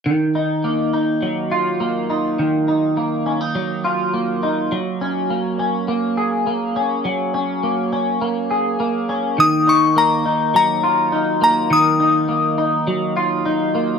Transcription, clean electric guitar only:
X:1
M:4/4
L:1/16
Q:1/4=103
K:D#m
V:1 name="Clean electric guitar"
D,2 D2 A,2 D2 F,2 E2 A,2 D2 | D,2 D2 A,2 C D F,2 E2 A,2 D2 | F,2 C2 A,2 C2 A,2 G2 A,2 C2 | F,2 C2 A,2 C2 A,2 G2 A,2 C2 |
D,2 D2 A,2 D2 F,2 E2 D2 A,2 | D,2 D2 A,2 D2 F,2 E2 D2 A,2 |]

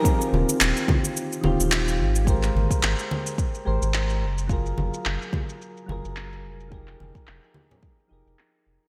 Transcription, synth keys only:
X:1
M:4/4
L:1/8
Q:"Swing 16ths" 1/4=108
K:Eb
V:1 name="Synth keys"
[E,CFG]4- [E,CFG] [E,CFG]3 | [A,GBc]4- [A,GBc] [A,GBc]2 z | [_G,FAB]4- [G,FAB] [G,FAB]3 | [F,EGAB]4- [F,EGAB] [F,EGAB]3 |]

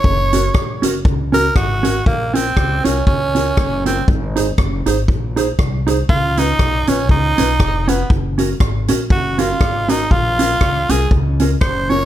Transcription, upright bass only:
X:1
M:4/4
L:1/8
Q:"Swing" 1/4=119
K:Bbm
V:1 name="Upright bass" clef=bass
G,,,2 B,,, G,,, D,,2 A,,,2 | B,,,2 D,, C,, D,,2 G,,,2 | A,,,2 G,,, A,,, B,,,2 C,,2 | D,,2 _C,, B,,, D,, C,, F,,,2 |
G,,,2 A,,, B,,, G,,,2 A,,,2 | B,,,2 D,, C,, D,,2 G,,,2 |]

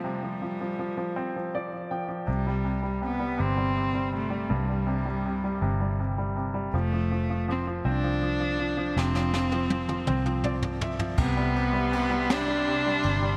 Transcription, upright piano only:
X:1
M:6/8
L:1/16
Q:3/8=54
K:C
V:1 name="Upright piano"
z8 d2 g2 | z12 | z12 | z12 |
z8 d2 e2 | z12 |]
V:2 name="Upright piano" clef=bass
[C,F,C] F, F, F, F, F, C F, F, F, F, F, | C, G, C, G, C, G, C, G, C, G, C, G, | G,, G, C, G, C, G, C, G, C, G, C, G, | F, F, F, F, F, F, C F, F, F, F, F, |
C, F, F, F, F, F, C F, F, F, F, F, | C, G, C, G, C, G, C, G, C, G, C, G, |]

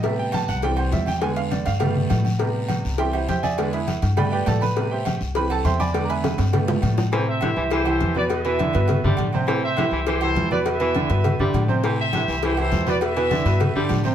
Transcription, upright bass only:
X:1
M:4/4
L:1/8
Q:1/4=203
K:Am
V:1 name="Upright bass" clef=bass
A,,3 C,,3 E,,2- | E,,3 G,,3 A,,2- | A,,3 C,,3 E,,2- | E,,3 G,,3 A,,2- |
A,,3 C,,3 E,,2- | E,,3 G,,3 A,,2- | A,,3 C,,3 E,,2- | E,,3 G,,2 G,, A,,2- |
A,,3 C,,3 E,,2- | E,,3 G,,2 G,, A,,2- | A,,3 C,,3 E,,2- | E,,3 G,,2 G,, A,,2 |]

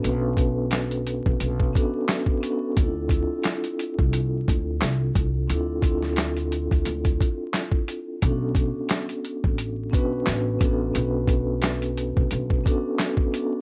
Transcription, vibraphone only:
X:1
M:4/4
L:1/8
Q:"Swing 16ths" 1/4=88
K:Bm
V:1 name="Vibraphone"
[B,CDFB]4 z [B,CDFA]2 [B,CDFA] | [=CDEA] [CDE=FA]4 z3 | [=CDE=FA] [CDEFA]4 z3 | [B,CDFA]4 z [B,CDFB]2 [B,CDFA] |
[B,CDFB]4 z [B,CDFA]2 [B,CDFA] |]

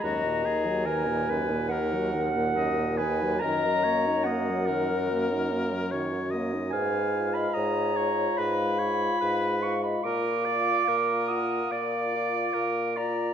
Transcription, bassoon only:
X:1
M:4/4
L:1/8
Q:1/4=72
K:Ebm
V:1 name="Bassoon" clef=bass
E,,8 | G,,8 | A,,2 A,,2 A,,2 A,,2 | B,,2 B,,2 B,,2 B,,2 |]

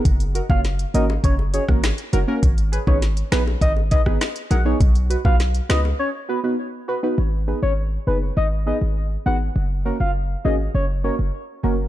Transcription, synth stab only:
X:1
M:4/4
L:1/16
Q:1/4=101
K:G#dor
V:1 name="Synth stab"
z2 [FA] [A,CFc] z2 [A,CFA] z3 [FG] [A,CFA] z2 [FA] [A,CFA] | z2 [GB] [B,DGB] z2 [B,DGB] z3 [GB] [B,DGB] z2 [GA] [B,DGc] | z2 [FB] [B,DFB] z2 [B,DFB] z3 [FB] [B,DFB] z2 [FB] [B,DFB] | z2 [B,DGB] z3 [B,DGB] z3 [B,DGB] z3 [B,DGB] z |
z2 [A,CFA] z3 [A,CFG] z3 [A,CFA] z3 [A,CFA] z |]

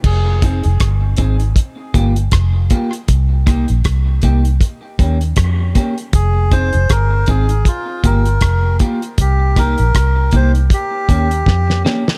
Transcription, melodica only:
X:1
M:4/4
L:1/8
Q:"Swing 16ths" 1/4=79
K:Fm
V:1 name="Melodica"
A z6 z | z8 | A c B A F B2 z | G B2 c G3 z |]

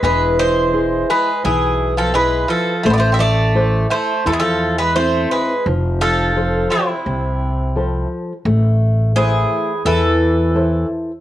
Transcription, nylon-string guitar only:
X:1
M:4/4
L:1/8
Q:1/4=86
K:none
V:1 name="Nylon-string guitar"
E,2 [E^G]2 B,,2 [EB]2 | A,2 [EAc]2 E2 [CE]2 | F,2 [F,Ac]2 C,2 [F,Ac]2 | A,2 [A,Ec]2 E,2 [EAc]2 |]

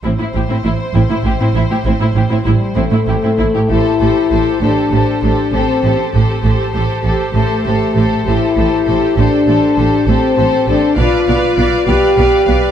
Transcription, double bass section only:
X:1
M:6/8
L:1/16
Q:3/8=66
K:Am
V:1 name="Double bass section" clef=bass
A,,, z A,,, z A,,, z A,,, z A,,, z A,,, z | A,,, z A,,, z A,,, z A,,, z A,,, z A,,, z | A,,,2 A,,,2 A,,,2 A,,,2 A,,,2 A,,,2 | A,,,2 A,,,2 A,,,2 A,,,2 A,,,2 A,,,2 |
A,,,2 A,,,2 A,,,2 A,,,2 A,,,2 A,,,2 | A,,,2 A,,,2 A,,,2 A,,,2 A,,,2 A,,,2 | B,,,2 B,,,2 B,,,2 B,,,2 B,,,2 B,,,2 |]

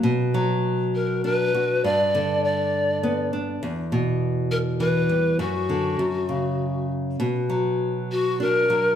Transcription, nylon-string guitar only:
X:1
M:3/4
L:1/8
Q:1/4=100
K:Bm
V:1 name="Nylon-string guitar" clef=bass
B,, F,3 D F | G,, D,3 B, D | E,, B,,3 E, G, | F,, D, F,, C,3 |
B,, F,3 D F, |]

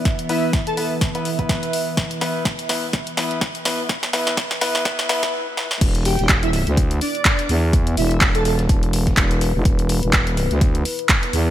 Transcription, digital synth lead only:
X:1
M:4/4
L:1/16
Q:"Swing 16ths" 1/4=125
K:C
V:1 name="Digital synth lead"
z2 E z2 A A z8 z | z16 | z16 | z2 G G z E E z3 D4 z2 |
z2 E z2 A A z8 z | z16 |]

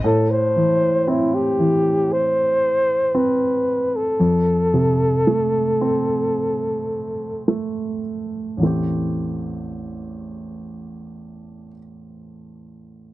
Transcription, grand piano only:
X:1
M:4/4
L:1/8
Q:1/4=54
K:Am
V:1 name="Grand piano" clef=bass
A,, E, C E,3 C2 | F,, C, A, C3 A,2 | [A,,,E,,E,A,CG]8 |]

